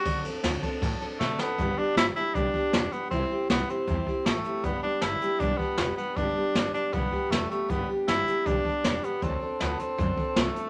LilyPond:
<<
  \new Staff \with { instrumentName = "Steel-string acoustic guitar" } { \time 4/4 \key g \major \tempo 4 = 157 <d fis c' d' a'>8 <c' d' a'>8 <d fis c' d' a'>8 <c' d' a'>8 <fis c' d' a'>8 <c' d' a'>8 <d fis c' d' a'>8 <c' d' a'>8 | <g, d g b d' g'>8 <g b d' g'>8 <g b d' g'>8 <g b d' g'>8 <g, d g b d' g'>8 <g b d' g'>8 <g b d' g'>8 <g b d' g'>8 | <c g c' e' g'>8 <c' e' g'>8 <g c' e' g'>8 <c' e' g'>8 <c g c' e' g'>8 <c' e' g'>8 <g c' e' g'>8 <c' e' g'>8 | <g, d g b d' g'>8 <g b d' g'>8 <g b d' g'>8 <g b d' g'>8 <g, d g b d' g'>8 <g b d' g'>8 <g b d' g'>8 <g b d' g'>8 |
<g, d g b d' g'>8 <g b d' g'>8 <g b d' g'>8 <g b d' g'>8 <g, d g b d' g'>8 <g b d' g'>8 <g b d' g'>8 <g b d' g'>8 | <g, d g b d' g'>8 <g b d' g'>8 <g b d' g'>8 <g b d' g'>8 <g, d g b d' g'>8 <g b d' g'>8 <g b d' g'>8 <g b d' g'>8 | <d fis c' d' a'>8 <c' d' a'>8 <fis c' d' a'>8 <c' d' a'>8 <d fis c' d' a'>8 <c' d' a'>8 <fis c' d' a'>8 <c' d' a'>8 | }
  \new Staff \with { instrumentName = "Tenor saxophone" } { \time 4/4 \key g \major fis'8 r2 r8 a8 b8~ | b8 d'8 e'8 e'8 d'4. b8 | c'4 b8 c'4. a4 | b8 d'8 e'4 d'8 b4 b8 |
d'4. d'8 b4 a8 a8 | b8 r8 e'4 d'4. b8 | c'4 b8 c'4. a4 | }
  \new Staff \with { instrumentName = "Upright bass" } { \clef bass \time 4/4 \key g \major d,8 fis,8 d,8 r8 a,8 r8 b,8 r8 | g,,8 r8 g,,8 r8 b,,8 r8 e,,8 r8 | c,8 r8 c,8 r8 e,8 r8 a,,8 r8 | g,,8 r8 g,,8 r8 b,,8 r8 e,,8 r8 |
g,,8 r8 g,,8 r8 b,,8 r8 e,,8 r8 | g,,8 r8 g,,8 r8 b,,8 r8 e,,8 r8 | d,8 r8 d,8 r8 fis,8 r8 c,8 r8 | }
  \new DrumStaff \with { instrumentName = "Drums" } \drummode { \time 4/4 <bd cymr>8 cymr8 <cymr sn>8 <bd cymr>8 <bd cymr>8 cymr8 sn8 sn8 | <hh bd>4 <hh sn>8 hh8 <hh bd>8 bd8 <hh sn>8 hh8 | <hh bd>4 <hh sn>8 hh8 <hh bd>8 bd8 <hh sn>8 hh8 | <hh bd>4 <hh sn>8 hh8 <hh bd>8 bd8 <hh sn>8 hh8 |
<hh bd>4 <hh sn>8 hh8 <hh bd>8 bd8 <hh sn>8 hh8 | <hh bd>4 <hh sn>8 hh8 <hh bd>8 bd8 <hh sn>8 hh8 | <hh bd>4 <hh sn>8 hh8 <hh bd>8 bd8 <hh sn>8 hh8 | }
>>